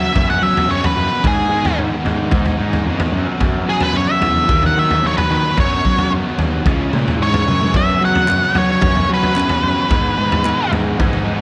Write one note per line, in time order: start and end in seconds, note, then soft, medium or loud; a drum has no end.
0.00 0.41 F#2 medium
0.00 0.43 F#2 medium
0.00 0.41 C#3 medium
0.00 0.69 C#3 medium
0.00 0.11 F#3 medium
0.00 0.41 F#3 medium
0.00 0.40 B3 medium
0.00 1.78 B3 medium
0.00 0.39 C#4 medium
0.00 0.28 E5 medium
0.15 0.38 F#2 medium
0.15 1.24 C#4 medium
0.15 kick loud
0.15 floor tom medium
0.30 0.43 F#5 medium
0.30 floor tom medium
0.40 0.66 F#2 medium
0.40 0.67 C#3 medium
0.40 0.65 F#3 medium
0.40 0.68 F#3 medium
0.40 0.95 F#3 medium
0.40 0.69 B3 medium
0.40 0.67 C#4 medium
0.40 0.69 E5 medium
0.57 floor tom medium
0.67 1.21 F#2 medium
0.67 0.80 F#2 medium
0.67 1.21 C#3 medium
0.67 1.24 C#3 medium
0.67 1.22 F#3 medium
0.67 1.24 B3 medium
0.67 0.85 C#5 medium
0.71 1.23 C#4 medium
0.84 1.24 B4 medium
0.84 floor tom medium
0.96 1.08 F#2 medium
0.96 1.24 F#3 medium
1.22 2.57 G#2 medium
1.22 1.46 G#2 medium
1.22 2.59 G#2 medium
1.22 2.57 D#3 medium
1.22 2.57 G#3 medium
1.22 2.58 B3 medium
1.22 2.57 D#4 medium
1.22 kick loud
1.22 floor tom medium
1.27 1.78 G#4 medium
1.49 1.72 G#2 medium
1.49 2.85 D#3 medium
1.65 floor tom medium
1.78 1.89 G#2 medium
1.78 3.14 B3 medium
2.05 2.28 G#2 medium
2.05 2.58 G#3 medium
2.05 floor tom medium
2.31 2.54 G#2 medium
2.31 3.14 D#4 medium
2.31 kick loud
2.31 floor tom medium
2.46 floor tom medium
2.59 2.82 G#2 medium
2.59 2.85 G#2 medium
2.59 2.86 D#3 medium
2.59 3.13 G#3 medium
2.59 2.86 G#3 medium
2.59 2.85 B3 medium
2.59 2.84 D#4 medium
2.73 floor tom medium
2.86 2.98 F2 loud
2.86 3.12 G#2 medium
2.86 3.14 D#3 medium
2.86 3.12 D#3 medium
2.86 3.13 G#3 medium
2.86 3.13 B3 medium
2.90 3.14 D#4 medium
3.00 floor tom loud
3.12 3.24 F#2 medium
3.12 4.47 F#2 medium
3.12 3.41 F#2 medium
3.12 4.48 C#3 medium
3.12 4.48 F#3 medium
3.16 4.49 B3 medium
3.16 4.49 C#4 medium
3.40 3.63 F#2 medium
3.40 4.50 F#2 medium
3.40 kick loud
3.40 floor tom medium
3.66 4.49 C#3 medium
3.66 3.89 F#3 medium
3.66 3.83 G#4 medium
3.81 3.95 B4 medium
3.81 floor tom medium
3.93 4.05 F#2 medium
3.93 4.49 B3 medium
3.93 4.11 C#5 medium
4.11 4.62 E5 medium
4.21 4.44 E2 medium
4.21 4.49 F#3 medium
4.21 floor tom medium
4.48 4.71 D#2 medium
4.48 5.55 D#3 loud
4.48 5.02 D#3 medium
4.48 5.56 F#3 loud
4.48 5.57 A#3 loud
4.48 5.57 D#4 medium
4.48 kick loud
4.48 floor tom medium
4.63 4.79 F#5 medium
4.63 floor tom medium
4.76 4.99 D#3 medium
4.76 5.29 F#3 medium
4.76 5.04 E5 medium
4.91 floor tom medium
5.03 5.14 D#2 loud
5.03 5.57 D#3 medium
5.03 5.17 C#5 medium
5.17 5.56 B4 medium
5.17 floor tom medium
5.30 5.41 D#3 medium
5.30 5.57 F#3 medium
5.56 6.64 F#2 medium
5.56 5.80 F#2 medium
5.56 6.66 F#2 medium
5.56 6.63 C#3 medium
5.56 6.65 F#3 medium
5.56 6.65 B3 loud
5.56 6.67 C#4 loud
5.56 6.11 C#5 medium
5.56 kick loud
5.56 floor tom medium
5.84 6.66 C#3 medium
5.84 6.07 F#3 medium
5.84 kick medium
5.98 floor tom medium
6.10 6.22 F#2 medium
6.10 6.66 B3 medium
6.38 6.61 D#2 medium
6.38 6.67 F#3 medium
6.38 floor tom medium
6.64 6.88 C#2 medium
6.64 7.72 C#3 medium
6.64 7.20 C#3 medium
6.64 7.73 E3 medium
6.64 7.73 G#3 loud
6.64 7.74 C#4 loud
6.64 kick loud
6.64 floor tom medium
6.93 7.17 A#2 medium
6.93 7.47 E3 medium
6.93 mid tom medium
7.08 floor tom medium
7.19 7.44 G#2 medium
7.19 7.75 C#3 medium
7.19 7.74 C#5 loud
7.34 floor tom medium
7.47 7.72 F#2 medium
7.47 7.75 E3 medium
7.47 mid tom medium
7.61 mid tom medium
7.72 9.07 F#2 medium
7.72 7.96 F#2 medium
7.72 9.10 F#2 medium
7.72 9.08 C#3 medium
7.72 9.08 F#3 medium
7.72 9.89 F#3 medium
7.72 9.08 B3 loud
7.72 9.89 C#4 medium
7.72 11.41 B4 medium
7.72 kick loud
7.72 floor tom medium
7.76 9.07 C#4 loud
7.76 8.02 E5 loud
8.01 9.37 C#3 medium
8.01 8.24 F#3 medium
8.05 8.56 F#5 medium
8.15 floor tom medium
8.28 8.40 F#2 medium
8.28 10.47 B3 medium
8.28 clap loud
8.55 9.08 F#3 medium
8.55 8.79 F#3 medium
8.55 9.09 C#5 medium
8.55 floor tom medium
8.81 9.05 F#2 loud
8.81 9.92 C#4 medium
8.81 kick loud
8.81 floor tom medium
8.95 floor tom medium
9.08 9.33 F#2 medium
9.08 9.35 C#3 medium
9.08 9.64 F#3 medium
9.08 9.32 F#3 medium
9.08 9.35 F#3 medium
9.08 9.37 B3 medium
9.08 9.34 C#4 medium
9.14 10.71 B4 medium
9.23 floor tom medium
9.35 9.88 F#2 medium
9.35 9.48 F#2 loud
9.35 9.89 C#3 medium
9.35 9.92 C#3 medium
9.35 9.89 F#3 medium
9.35 9.91 B3 medium
9.35 9.91 C#4 medium
9.35 clap medium
9.49 floor tom medium
9.63 9.75 F#2 medium
9.63 9.92 F#3 medium
9.89 11.24 G#2 medium
9.89 10.13 G#2 medium
9.89 11.28 G#2 medium
9.89 11.25 D#3 medium
9.89 11.25 G#3 medium
9.89 11.25 B3 medium
9.89 11.24 D#4 medium
9.89 11.41 D#4 medium
9.89 kick loud
9.89 floor tom medium
9.93 11.41 G#3 medium
10.18 10.41 G#2 medium
10.18 11.41 D#3 medium
10.32 floor tom medium
10.45 10.57 G#2 loud
10.45 11.41 B3 medium
10.45 clap medium
10.72 10.95 G#2 medium
10.72 11.26 G#3 medium
10.72 floor tom medium
10.99 11.22 G#2 medium
10.99 11.41 D#4 medium
10.99 kick loud
10.99 floor tom medium
11.13 floor tom medium
11.25 11.41 G#2 medium
11.25 11.41 D#3 medium
11.25 11.41 G#3 medium
11.25 11.41 B3 medium
11.25 11.41 D#4 medium